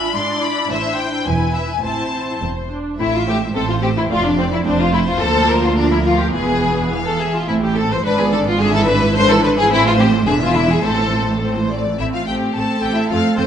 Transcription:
Already playing: double bass section G#1, cello section G#2, viola section D4 F4, violin section E5 B5
0.15 double bass section G#2, cello section G#3, viola section E4, violin section D5 C6
0.43 violin section B5
0.70 double bass section A1, cello section A2, violin section C5 E5
0.98 violin section G5
1.26 double bass section E1, cello section E2, viola section E4, violin section B4 G#5
1.54 violin section E5
1.69 violin section G#5
1.83 double bass section A1, cello section A2, viola section C4 E4, violin section C5 A5
2.41 double bass section E1, cello section E2, viola section C4
2.71 viola section D4
2.99 double bass section A1, cello section A2, viola section A3 C4, violin section E4 E5
3.14 violin section F4
3.27 viola section A3 C4, violin section G4
3.54 double bass section A1, cello section A2, viola section A3 C4, violin section A4 C5
3.69 violin section F4
3.82 viola section A3 C4, violin section G4
3.97 violin section E4
4.10 double bass section F1, cello section F2, viola section A3 C4, violin section F4 D5
4.26 violin section D4
4.37 viola section A3 C4, violin section C4
4.53 violin section E4
4.65 double bass section F1, cello section F2, viola section A3 C4, violin section D4 C5
4.80 violin section F4
4.93 viola section A3 C4, violin section E4
5.08 violin section F4
5.21 cello section D2, double bass section D2, viola section F3 A#3, violin section A4
5.49 violin section A#4
5.64 violin section F4
5.77 viola section F3 A#3, violin section D4 A#4
5.92 violin section E4
6.05 violin section F4
6.20 violin section G4
6.33 double bass section E1, cello section E2, viola section E3 B3, violin section G#4 B4
6.91 violin section F5
7.05 violin section A4
7.19 violin section G#4 E5
7.35 violin section F4
7.48 double bass section A1, cello section A2, viola section A3 C4, violin section E4
7.63 viola section E3 A3, violin section G4
7.76 viola section A3 C4, violin section A4
7.91 viola section E3 A3, violin section C5
8.04 double bass section G#1, cello section G#2, viola section D3 D4, violin section B4 D5
8.19 viola section F3 B3, violin section G#4
8.33 viola section D3 D4, violin section A4
8.47 viola section F3 B3, violin section F4
8.60 viola section D3 D4, violin section G#4 E5
8.74 viola section E3 E4, violin section A4
8.87 viola section D3 D4, violin section B4
9.02 viola section E3 E4
9.15 viola section D3 D4, violin section B4 C5
9.30 viola section E3 E4, violin section A4
9.43 viola section D3 D4, violin section B4
9.57 viola section E3 E4, violin section G#4
9.71 double bass section A1, cello section A2, viola section A3 C4, violin section E4 C5
9.85 viola section E3 A3, violin section F4
9.99 viola section A3 C4, violin section G4
10.13 viola section E3 A3
10.27 double bass section E1, cello section E2, viola section D3 D4, violin section G#4 E5
10.41 viola section E3 E4, violin section F4
10.55 viola section D3 D4, violin section E4
10.70 viola section E3 E4, violin section G#4
10.84 double bass section A1, cello section A2, viola section A3 C4, violin section A4 C5
10.98 viola section E3 A3
11.13 viola section A3 C4
11.27 viola section E3 A3
11.41 viola section A3 C4, violin section C5
11.56 viola section E3 A3
11.71 viola section A3 C4, violin section D5
11.86 viola section E3 A3
11.99 double bass section A1, viola section A3 C4, violin section E4 E5
12.14 violin section F4 F5
12.27 double bass section A1, viola section A3 C4, violin section G4 G5
12.55 double bass section A1, viola section A3 C4, violin section A4 A5, cello section A4
12.83 double bass section A1, viola section A3 C4, violin section G4 G5
12.96 violin section E4 E5
13.09 double bass section F2, viola section A3 C4, violin section F4 F5
13.37 double bass section F2, viola section A3 C4, violin section C4 C5

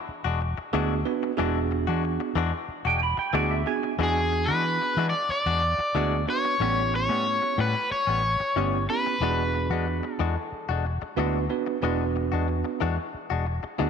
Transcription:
Already playing: clean electric guitar B5
0.09 muted fingered electric bass stroke
0.24 fingered electric bass E1, clean electric guitar G#3 D4 F#4
0.41 muted clean electric guitar stroke
0.58 muted clean electric guitar stroke, muted fingered electric bass stroke
0.73 fingered electric bass D2, clean electric guitar E3 G#3 D4 F#4, tine electric piano B3 D4 F#4 G#4
1.05 tine electric piano B3 D4 F#4 B4, muted clean electric guitar stroke
1.23 muted clean electric guitar stroke
1.37 fingered electric bass E1, clean electric guitar E3 G#3 D4 F#4, tine electric piano B3 D4 F#4 G#4
1.71 muted clean electric guitar stroke
1.87 fingered electric bass E2, clean electric guitar G#3 D4 F#4
2.04 muted clean electric guitar stroke
2.20 muted clean electric guitar stroke
2.35 fingered electric bass E2, clean electric guitar E3 G#3 D4 F#4
2.53 muted clean electric guitar stroke
2.68 muted fingered electric bass stroke
2.85 fingered electric bass E1, clean electric guitar G#3 D4 F#4 G5
3.01 clean electric guitar B5, muted clean electric guitar stroke
3.17 clean electric guitar G5, muted clean electric guitar stroke, muted fingered electric bass stroke
3.33 fingered electric bass D2, clean electric guitar E3 G#3 D4 F#4 D5, tine electric piano B3 D4 F#4 G#4
3.51 clean electric guitar E5
3.66 tine electric piano B3 D4 F#4 G#4, clean electric guitar G#5, muted clean electric guitar stroke
3.83 muted clean electric guitar stroke
3.98 fingered electric bass E2, clean electric guitar E3 G#3 D4 F#4, tine electric piano B3 D4 F#4 G#4
4.03 overdriven electric guitar G#4
4.32 muted clean electric guitar stroke
4.46 fingered electric bass E3, clean electric guitar F#4, overdriven electric guitar B4
4.50 clean electric guitar G#3 D4
4.82 muted clean electric guitar stroke
4.97 fingered electric bass E3, clean electric guitar E3 G#3 D4 F#4
5.10 overdriven electric guitar D5
5.14 muted clean electric guitar stroke
5.29 overdriven electric guitar D5, muted fingered electric bass stroke
5.46 fingered electric bass E2, clean electric guitar G#3 D4 F#4
5.78 muted fingered electric bass stroke, muted clean electric guitar stroke
5.95 fingered electric bass D2, clean electric guitar E3 G#3 D4 F#4, tine electric piano B3 D4 F#4 G#4
6.28 tine electric piano B3 D4 F#4 B4, overdriven electric guitar C#5, muted clean electric guitar stroke
6.45 muted clean electric guitar stroke
6.60 fingered electric bass A1, clean electric guitar A2 G3 B3 C#4, tine electric piano B3 C#4 E4 G4
6.93 overdriven electric guitar C#5, muted clean electric guitar stroke
7.09 fingered electric bass A2, clean electric guitar G3 B3 C#4
7.26 muted clean electric guitar stroke
7.42 muted clean electric guitar stroke
7.58 fingered electric bass A2, clean electric guitar A2 G3 B3 C#4, overdriven electric guitar B4
7.76 muted clean electric guitar stroke
7.91 overdriven electric guitar C#5, muted fingered electric bass stroke
8.07 fingered electric bass A1, clean electric guitar G3 B3 C#4
8.23 muted clean electric guitar stroke
8.40 muted clean electric guitar stroke
8.56 fingered electric bass G1, clean electric guitar A2 G3 B3 C#4, tine electric piano B3 C#4 E4 G4
8.90 tine electric piano B3 C#4 E4 G4, overdriven electric guitar B4, muted clean electric guitar stroke
9.06 muted clean electric guitar stroke
9.20 fingered electric bass E1, clean electric guitar E3 G#3 D4 F#4, tine electric piano B3 D4 F#4 G#4
9.54 muted clean electric guitar stroke
9.70 fingered electric bass E2, clean electric guitar G#3 D4 F#4
9.87 muted clean electric guitar stroke
10.03 muted clean electric guitar stroke
10.15 overdriven electric guitar A4
10.19 fingered electric bass E2, clean electric guitar E3 G#3 D4 F#4
10.36 muted clean electric guitar stroke
10.52 muted fingered electric bass stroke
10.69 fingered electric bass E1, clean electric guitar G#3 D4 F#4
10.86 muted clean electric guitar stroke
11.02 muted clean electric guitar stroke
11.17 fingered electric bass D2, clean electric guitar E3 G#3 D4 F#4, tine electric piano B3 D4 F#4 B4
11.49 tine electric piano B3 D4 F#4 B4, muted clean electric guitar stroke
11.66 muted clean electric guitar stroke
11.82 fingered electric bass E1, clean electric guitar E3 G#3 D4 F#4, tine electric piano B3 D4 F#4 B4
12.16 muted clean electric guitar stroke
12.32 fingered electric bass E2, clean electric guitar G#3 D4 F#4
12.48 muted clean electric guitar stroke
12.64 muted clean electric guitar stroke
12.81 fingered electric bass E2, clean electric guitar E3 G#3 D4 F#4
12.98 muted clean electric guitar stroke
13.14 muted fingered electric bass stroke
13.30 fingered electric bass E1, clean electric guitar G#3 D4 F#4
13.46 muted clean electric guitar stroke
13.63 muted clean electric guitar stroke, muted fingered electric bass stroke
13.79 fingered electric bass D2, clean electric guitar E3 G#3 D4 F#4, tine electric piano B3 D4 F#4 G#4

